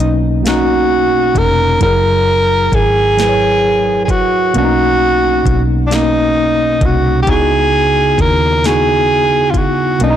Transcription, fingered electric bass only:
0.00 B1
1.36 F1
1.82 F#1
2.73 G#1
4.56 B1
5.46 B1
6.82 C2
7.28 C#2
8.19 D#2
10.01 B1

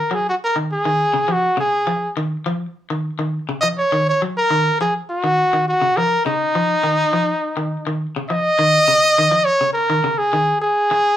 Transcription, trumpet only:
Already playing: A#4
0.14 G#4
0.29 F#4
0.44 A#4
0.72 G#4
1.32 F#4
1.60 G#4
3.61 D#5
3.78 C#5
4.09 C#5
4.38 A#4
4.81 G#4
5.10 F#4
5.68 F#4
5.97 A#4
6.25 D#4
8.30 D#5
9.45 C#5
9.73 A#4
10.18 G#4
10.61 G#4

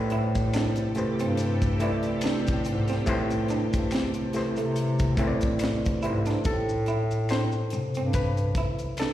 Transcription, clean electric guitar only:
0.12 E4
0.54 D4
0.97 muted clean electric guitar stroke
1.21 C4
1.82 E4
2.24 D4
2.66 muted clean electric guitar stroke
2.90 C4
3.50 D4
3.92 C4
4.35 muted clean electric guitar stroke
4.58 A3
5.19 C4
5.61 muted clean electric guitar stroke
6.03 E4
6.27 D4
6.88 E4
7.31 D4
7.73 muted clean electric guitar stroke
7.97 C4
8.58 E4
9.00 D4

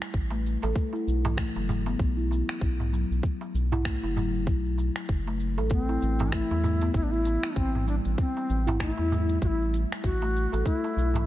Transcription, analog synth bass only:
0.14 A1
0.63 A1
1.07 B1
1.56 F#1
1.99 B1
2.62 B1
3.11 B1
3.54 B1
4.03 F#1
4.47 B1
5.09 F#1
5.58 A1
6.02 A1
6.51 E2
6.94 A1
7.56 A1
8.05 A1
8.50 A1
8.98 E2
9.42 A1
10.04 A1
10.53 A1
10.97 B1

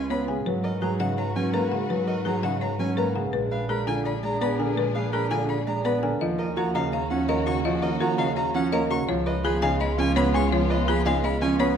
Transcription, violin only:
0.10 B5
0.64 D#5
0.82 A#5
0.99 F#5
1.18 A#5
1.36 G#5
1.53 A#5
2.07 D#5
2.25 A#5
2.44 F#5
2.61 A#5
2.79 G#5
2.97 A#5
3.51 F5
3.69 B5
3.87 G#5
4.05 B5
4.23 A#5
4.41 B5
4.95 F5
5.13 B5
5.31 G#5
5.49 B5
5.67 A#5
5.85 B5
6.39 D#5
6.57 A#5
6.75 F5
6.93 A#5
7.10 F#5
7.28 A#5
7.46 C#6
7.82 D#5
8.00 A#5
8.18 F5
8.36 A#5
8.54 F#5
8.72 A#5
8.90 C#6
9.26 D#5
9.44 B5
9.62 F5
9.80 B5
9.98 G#5
10.16 B5
10.34 C#6
10.70 D#5
10.88 B5
11.06 F5
11.24 B5
11.41 G#5
11.60 B5

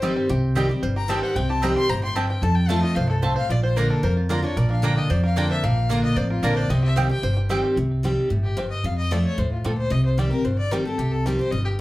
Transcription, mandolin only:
0.02 C4 G4 D#5 G5
0.55 C4 G4 D#5 G5
1.09 C4 G4 D#5 G5
1.62 C4 G4 D#5 G5
2.16 C4 G4 D#5 G5
2.69 A3 F4 C5 A5
3.22 A3 F4 C5 A5
3.76 A#3 F4 D5 A#5
4.29 A#3 F4 D5 A#5
4.83 A#3 F4 D5 A#5
5.36 A#3 F4 D5 A#5
5.89 A#3 F4 D5 A#5
6.43 A#3 F4 D5 A#5
6.96 C4 G4 D#5 G5
7.50 C4 G4 D#5 G5

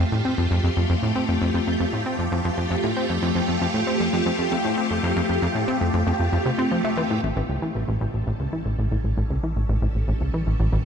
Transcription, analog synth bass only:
0.12 A2
0.25 C4
0.38 F2
0.51 F2
0.64 F2
0.77 F2
0.90 F2
1.03 A2
1.16 C4
1.29 F2
1.42 F2
1.54 F2
1.67 F2
1.80 F2
1.93 A2
2.06 C4
2.19 F2
2.32 F2
2.45 F2
2.58 F2
2.71 F2
2.84 A2
2.97 C4
3.09 F2
3.22 F2
3.35 F2
3.48 F2
3.61 F2
3.74 A2
3.87 C4
4.00 F2
4.13 F2
4.26 F2
4.39 F2
4.52 F2
4.65 A2
4.78 C4
4.90 F2
5.03 F2
5.16 F2
5.29 F2
5.42 F2
5.55 A2
5.68 C4
5.81 F2
5.94 F2
6.07 F2
6.20 F2
6.33 F2
6.46 C3
6.58 C4
6.71 F3
6.84 A3
6.97 E3
7.10 A2
7.23 A1
7.36 A1
7.49 C#2
7.62 E3
7.75 A1
7.88 A1
8.01 A1
8.14 A1
8.27 A1
8.40 C#2
8.53 E3
8.66 A1
8.79 A1
8.92 A1
9.04 A1
9.17 A1
9.30 C#2
9.43 E3
9.56 A1
9.69 A1
9.82 A1
9.95 A1
10.08 A1
10.21 C#2
10.34 E3
10.47 A1
10.60 A1
10.72 A1

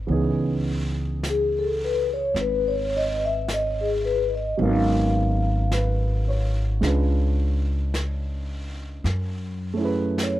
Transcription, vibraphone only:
1.29 G#4
1.59 A4
1.84 B4
2.13 C#5
2.41 B4
2.68 C#5
2.97 D#5
3.25 E5
3.53 D#5
3.81 G#4
4.05 B4
4.35 D#5
4.62 F5
10.23 C#5

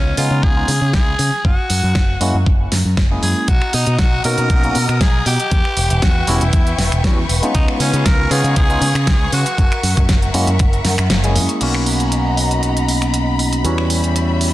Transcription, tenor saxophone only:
Already playing: C#4
0.18 F4
0.43 G#4
0.95 G#4
1.46 F#4
3.23 G#4
3.49 F#4
3.74 D#4
3.99 F#4
4.25 A#4
5.01 G#4
5.27 G4
6.03 F#4
6.29 E4
7.55 D#4
7.81 C#4
8.06 A#4
8.31 G#4
8.57 G#4
9.33 F#4

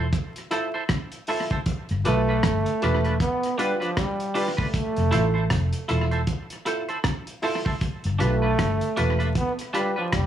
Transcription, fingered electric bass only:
1.91 G1
2.07 B1
2.44 G1
2.84 E1
4.98 F1
5.13 A1
5.52 F1
5.91 E1
8.05 G1
8.21 B1
8.60 G1
8.99 E1
10.13 F1

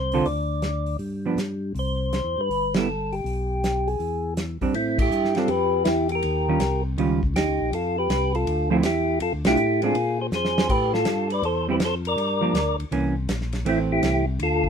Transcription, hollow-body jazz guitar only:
0.14 D3 C4 F4 A4
1.26 F3 B3 D4
2.76 G3 B3 E4
4.62 G3 C4 D4
5.37 G3 C4 D4
6.49 D#3 G3 C#4 F4
6.98 D#3 G3 C#4 F4
8.70 F3 A3 C4 E4
9.46 A3 D4 F4
9.83 G#3 C4 D4
11.69 G3 C4 E4
12.41 F3 A#3 D4
12.92 E3 A#3 C#4
13.65 E3 A3 C4

